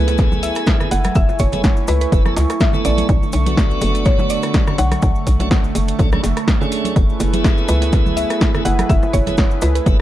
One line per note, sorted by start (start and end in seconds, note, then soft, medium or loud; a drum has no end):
0.00 0.51 C#2 medium
0.00 0.77 A3 medium
0.00 3.05 A3 medium
0.00 0.77 B3 medium
0.00 0.77 E4 medium
0.00 3.05 E4 medium
0.00 0.78 G#4 medium
0.00 0.44 B4 loud
0.00 1.14 B4 medium
0.00 3.05 G#5 medium
0.08 closed hi-hat medium
0.08 high bongo medium
0.08 cabasa soft
0.18 kick loud
0.18 snare soft
0.18 closed hi-hat medium
0.18 cabasa medium
0.32 high bongo soft
0.32 high conga medium
0.32 low conga medium
0.32 cabasa soft
0.43 0.93 E5 loud
0.43 open hi-hat loud
0.43 cabasa loud
0.55 cross-stick medium
0.55 closed hi-hat medium
0.55 cabasa soft
0.67 kick loud
0.67 snare loud
0.67 closed hi-hat medium
0.67 high bongo medium
0.67 high conga medium
0.67 cabasa medium
0.80 0.89 A3 medium
0.80 0.89 B3 medium
0.80 0.89 E4 medium
0.80 0.89 G#4 medium
0.80 cross-stick medium
0.80 low conga loud
0.80 cabasa soft
0.91 1.10 F#1 medium
0.91 1.16 F#5 loud
0.91 open hi-hat loud
0.91 high bongo medium
0.91 cabasa loud
1.04 cross-stick medium
1.04 closed hi-hat medium
1.04 high conga loud
1.04 cabasa soft
1.15 1.25 F#1 loud
1.15 1.38 E5 loud
1.15 6.92 C#6 medium
1.15 kick loud
1.15 closed hi-hat medium
1.15 cabasa medium
1.29 high bongo medium
1.29 cabasa soft
1.39 1.83 F#1 medium
1.39 1.90 C#5 loud
1.39 kick medium
1.39 open hi-hat loud
1.39 cabasa loud
1.52 1.62 A3 medium
1.52 1.62 B3 medium
1.52 1.62 E4 medium
1.52 1.62 G#4 medium
1.52 closed hi-hat medium
1.52 high bongo medium
1.52 high conga medium
1.52 low conga medium
1.52 cabasa soft
1.64 kick loud
1.64 snare loud
1.64 closed hi-hat medium
1.64 cabasa medium
1.77 cabasa soft
1.88 2.06 C#2 medium
1.88 2.00 B4 medium
1.88 open hi-hat loud
1.88 high bongo medium
1.88 cabasa loud
2.01 2.46 B4 medium
2.01 closed hi-hat medium
2.01 cabasa soft
2.12 2.31 F#1 medium
2.12 2.23 A3 medium
2.12 2.23 B3 medium
2.12 2.23 E4 medium
2.12 2.23 B4 loud
2.12 kick loud
2.12 closed hi-hat medium
2.12 high bongo medium
2.12 cabasa soft
2.25 2.34 A3 medium
2.25 2.34 B3 medium
2.25 2.35 E4 medium
2.25 2.35 A4 medium
2.25 cross-stick medium
2.25 high conga medium
2.25 low conga medium
2.25 cabasa soft
2.37 2.46 C#2 loud
2.37 snare soft
2.37 open hi-hat loud
2.37 cabasa loud
2.50 cross-stick medium
2.50 closed hi-hat medium
2.50 high bongo medium
2.50 cabasa soft
2.60 2.86 E5 loud
2.60 kick loud
2.60 snare loud
2.60 closed hi-hat medium
2.60 high conga medium
2.60 cabasa medium
2.73 3.08 A3 medium
2.73 3.08 B3 medium
2.73 3.08 E4 medium
2.73 3.08 A4 loud
2.73 high bongo soft
2.73 low conga medium
2.73 cabasa soft
2.85 3.03 A1 medium
2.85 4.02 D5 loud
2.85 open hi-hat loud
2.85 cabasa loud
2.98 closed hi-hat medium
2.98 high conga medium
2.98 cabasa soft
3.09 3.19 B1 loud
3.09 6.92 D3 medium
3.09 10.01 A3 medium
3.09 kick loud
3.09 closed hi-hat medium
3.09 cabasa soft
3.23 high bongo soft
3.23 cabasa soft
3.33 3.77 B1 medium
3.33 open hi-hat loud
3.33 cabasa loud
3.46 4.64 A3 medium
3.46 4.64 B3 medium
3.46 4.64 D4 medium
3.46 4.65 F#4 medium
3.46 closed hi-hat medium
3.46 high conga loud
3.46 cabasa soft
3.57 kick loud
3.57 snare loud
3.57 closed hi-hat medium
3.57 high bongo medium
3.57 cabasa medium
3.71 cabasa soft
3.81 4.38 F#1 medium
3.81 open hi-hat loud
3.81 high bongo medium
3.81 high conga medium
3.81 cabasa medium
3.95 closed hi-hat medium
3.95 cabasa soft
4.05 4.31 C#5 loud
4.05 kick loud
4.05 snare soft
4.05 closed hi-hat medium
4.05 cabasa soft
4.19 high bongo medium
4.19 high conga medium
4.19 low conga medium
4.19 cabasa soft
4.30 4.75 D5 loud
4.30 open hi-hat loud
4.30 cabasa loud
4.42 cross-stick medium
4.42 closed hi-hat medium
4.42 high bongo medium
4.42 cabasa soft
4.54 kick loud
4.54 snare loud
4.54 closed hi-hat medium
4.54 high conga medium
4.54 cabasa soft
4.67 4.76 A3 medium
4.67 4.76 C#4 medium
4.67 4.76 D4 medium
4.67 4.77 F#4 medium
4.67 cross-stick medium
4.67 low conga medium
4.67 cabasa soft
4.78 4.97 B1 loud
4.78 5.71 F#5 medium
4.78 open hi-hat loud
4.78 high bongo medium
4.78 cabasa loud
4.92 cross-stick medium
4.92 closed hi-hat medium
4.92 high conga loud
4.92 cabasa soft
5.02 5.12 B1 loud
5.02 kick loud
5.02 closed hi-hat medium
5.02 high bongo medium
5.02 cabasa soft
5.15 cabasa soft
5.27 5.71 B1 medium
5.27 kick medium
5.27 open hi-hat loud
5.27 cabasa medium
5.40 5.49 A3 medium
5.40 5.49 C#4 medium
5.40 5.49 D4 medium
5.40 5.49 F#4 medium
5.40 closed hi-hat medium
5.40 high bongo medium
5.40 high conga medium
5.40 cabasa soft
5.51 kick loud
5.51 snare loud
5.51 closed hi-hat medium
5.51 cabasa medium
5.64 high bongo medium
5.64 cabasa soft
5.75 5.94 F#1 medium
5.75 open hi-hat loud
5.75 cabasa medium
5.88 closed hi-hat medium
5.88 cabasa soft
5.99 6.18 B1 medium
5.99 6.10 A3 medium
5.99 6.10 C#4 medium
5.99 6.10 D4 medium
5.99 6.10 A4 loud
5.99 kick loud
5.99 closed hi-hat medium
5.99 high bongo medium
5.99 cabasa medium
6.12 6.21 A3 medium
6.12 6.22 C#4 medium
6.12 6.22 D4 medium
6.12 6.22 G#4 medium
6.12 cross-stick medium
6.12 high conga medium
6.12 low conga medium
6.12 cabasa soft
6.23 6.33 F#1 loud
6.23 snare soft
6.23 open hi-hat loud
6.23 high bongo medium
6.23 cabasa medium
6.37 cross-stick medium
6.37 closed hi-hat medium
6.37 cabasa soft
6.48 kick loud
6.48 snare loud
6.48 closed hi-hat medium
6.48 high conga medium
6.48 cabasa soft
6.61 6.95 A3 medium
6.61 6.95 C#4 medium
6.61 6.95 D4 medium
6.61 6.95 G#4 loud
6.61 high bongo medium
6.61 low conga medium
6.61 cabasa soft
6.72 open hi-hat loud
6.72 cabasa medium
6.85 closed hi-hat medium
6.85 high bongo soft
6.85 high conga medium
6.85 cabasa soft
6.96 7.06 F#1 loud
6.96 10.01 E4 medium
6.96 10.01 G#4 medium
6.96 10.01 B4 medium
6.96 kick loud
6.96 closed hi-hat medium
6.96 cabasa soft
7.09 cabasa soft
7.20 7.64 F#1 medium
7.20 open hi-hat loud
7.20 high bongo medium
7.20 cabasa medium
7.33 8.51 A3 medium
7.33 8.51 B3 medium
7.33 8.51 E4 medium
7.33 8.52 G#4 medium
7.33 closed hi-hat medium
7.33 high conga loud
7.33 cabasa soft
7.44 kick loud
7.44 snare loud
7.44 closed hi-hat medium
7.44 high bongo medium
7.44 cabasa soft
7.58 cabasa soft
7.68 8.25 C#2 medium
7.68 8.18 B4 loud
7.68 open hi-hat loud
7.68 high conga medium
7.68 cabasa medium
7.82 closed hi-hat medium
7.82 high bongo medium
7.82 cabasa soft
7.93 kick loud
7.93 snare soft
7.93 closed hi-hat medium
7.93 cabasa medium
8.06 high bongo medium
8.06 high conga medium
8.06 low conga medium
8.06 cabasa soft
8.17 8.67 E5 loud
8.17 open hi-hat loud
8.17 cabasa medium
8.30 cross-stick medium
8.30 closed hi-hat medium
8.30 cabasa soft
8.41 kick loud
8.41 snare loud
8.41 closed hi-hat medium
8.41 high bongo medium
8.41 high conga medium
8.41 cabasa medium
8.54 8.63 A3 medium
8.54 8.63 B3 medium
8.54 8.64 E4 medium
8.54 8.64 G#4 medium
8.54 cross-stick medium
8.54 low conga medium
8.54 cabasa soft
8.65 8.84 F#1 loud
8.65 8.90 F#5 loud
8.65 open hi-hat loud
8.65 high bongo medium
8.65 cabasa medium
8.79 cross-stick medium
8.79 closed hi-hat medium
8.79 high conga medium
8.79 cabasa soft
8.89 8.99 F#1 loud
8.89 9.12 E5 loud
8.89 kick loud
8.89 closed hi-hat medium
8.89 cabasa soft
9.02 high bongo medium
9.02 cabasa soft
9.13 9.58 F#1 medium
9.13 9.63 C#5 loud
9.13 kick medium
9.13 open hi-hat loud
9.13 cabasa loud
9.26 9.36 A3 medium
9.26 9.36 B3 medium
9.26 9.36 E4 medium
9.26 9.36 G#4 medium
9.26 closed hi-hat medium
9.26 high bongo medium
9.26 high conga loud
9.26 low conga loud
9.26 cabasa soft
9.37 kick loud
9.37 snare loud
9.37 closed hi-hat medium
9.37 cabasa soft
9.51 cabasa soft
9.62 9.81 C#2 medium
9.62 9.68 B4 medium
9.62 open hi-hat loud
9.62 high bongo medium
9.62 cabasa medium
9.75 10.01 B4 medium
9.75 closed hi-hat medium
9.75 cabasa soft
9.86 10.01 F#1 medium
9.86 9.97 A3 medium
9.86 9.97 B3 medium
9.86 9.97 E4 medium
9.86 9.97 B4 loud
9.86 kick loud
9.86 closed hi-hat medium
9.86 high bongo medium
9.86 cabasa medium